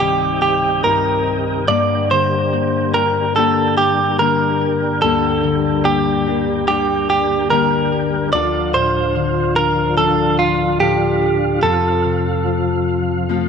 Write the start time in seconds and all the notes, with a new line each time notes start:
Already playing: C2 G2 C3 D#4 G4
0.00 D#3 G3 C4 D#4 G4
0.42 G4
0.84 G2 G3 C4 D#4 G4 A#4
1.68 G2 D3 G3 A#3 D4 G4 D5
2.11 D3 C5
2.53 A#3
2.94 G3 A#3 D4 G4 A#4
3.36 G3 A#3 D4 G4 A4
3.77 G4
4.19 D3 G3 A#3 D4 G4 A#4
5.02 D2 G2 D3 G3 A#3 D4 G4 A4
5.45 D3
5.85 A#3 G4
6.27 G3 A#3 D4 G4
6.68 G3 A#3 D4 G4
7.10 G4
7.50 D3 G3 A#3 D4 G4 A#4
8.33 D2 D3 F3 D4 F4 A4 D5
8.74 A2 C5
9.16 D3
9.56 D4 F4 A#4
9.97 F3 D4 F4 A4
10.39 F4
10.80 A2 F3 D4 F4 G4 A4
11.63 F2 C3 F3 C4 F4 A4
12.05 C3
12.46 F3
13.29 F3 A3 C4 F4 A4